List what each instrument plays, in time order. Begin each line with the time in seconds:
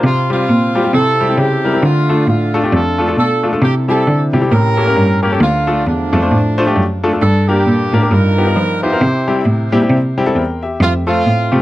0.03 cello C3, grand piano C3, horn section C4 F4
0.30 grand piano G3 C4 F4 G4, horn section C4 F4
0.49 cello A#2
0.75 grand piano G3 C4 F4 G4
0.84 grand piano G3 C4 F4 G4
0.93 cello C3, grand piano C3, horn section C4 E4 A4
1.20 grand piano G3 C4 E4 G4
1.29 grand piano G3 C4 E4 G4
1.38 cello C#3, horn section C4 E4 G4
1.65 grand piano G3 C4 E4 A#4
1.74 grand piano G3 C4 E4 A#4
1.83 cello D3, grand piano D3, horn section A3 D4 F4
2.09 grand piano A3 D4 F4 A4
2.27 cello A2, horn section A3 D4 F4
2.54 grand piano A3 D4 F4 A4
2.64 grand piano A3 D4 F4 G4
2.72 cello F2, horn section D4 F4 A4
2.98 grand piano A3 D4 F4 A4
3.08 grand piano A3 D4 F4 A4
3.17 cello B2, horn section D4 F4 A4
3.43 grand piano A3 D4 F4 A4
3.52 grand piano A3 D4 F4 A4
3.61 grand piano C3, cello C3, horn section C4 E4 G4
3.88 grand piano G3 C4 E4 G4, horn section C4 E4 A4
4.07 cello D3
4.33 cello C3, grand piano G3 C4 E4 G4
4.41 grand piano G3 C4 E4 G4
4.50 grand piano A2, cello A2, horn section C#4 G4 A#4
4.77 grand piano A#3 C#4 G4 A4
4.87 grand piano A#3 C#4 G4 A#4
4.96 cello G2
5.22 grand piano A#3 C#4 G4 A#4, horn section G4
5.32 grand piano A#3 C#4 G4 A4
5.40 cello D2, grand piano D3, horn section A3 D4 F4
5.67 grand piano A3 D4 F4 A4
5.86 cello E2, horn section F3 A3 D4
6.13 cello F2, grand piano A3 D4 F4 A4
6.22 grand piano A3 D4 F4 C5
6.31 cello A2
6.58 grand piano A3 D4 F4 C5
6.67 grand piano A3 D4 F4 G4
6.76 cello F#2
7.04 grand piano A3 D4 F4 A4
7.13 grand piano A3 D4 F4 A4
7.21 cello G2, grand piano G2, horn section D4 A4
7.48 grand piano A#3 D4 G4 A#4, horn section A#3 D4 G4
7.66 cello A#2
7.93 cello A2, grand piano A#3 D4 G4 A#4
8.02 grand piano A#3 D4 G4 A#4
8.11 cello G2, grand piano G2, horn section D#4 F4 A#4
8.38 grand piano B3 D#4 F4 G4
8.47 grand piano B3 D#4 F4 A#4
8.56 cello F3
8.83 grand piano B3 D#4 F4 G4, horn section E4 G4 C5
8.92 grand piano B3 D#4 F4 A#4
9.01 cello C3, grand piano C3
9.28 grand piano G3 C4 E4 G4
9.45 cello A2
9.72 cello A#2, grand piano G3 C4 E4 G4
9.82 grand piano G3 C4 E4 G4
9.90 cello C3
10.18 grand piano G3 C4 E4 G4
10.26 grand piano G3 C4 E4 A4
10.35 cello E2, grand piano A#4 G5
10.63 grand piano G4 E5
10.80 cello F2, horn section A3 C4 F4
11.07 grand piano A3 C4 F4 A4, horn section A3 C4 F4
11.26 cello A2
11.52 cello C3, grand piano A3 C4 F4 G4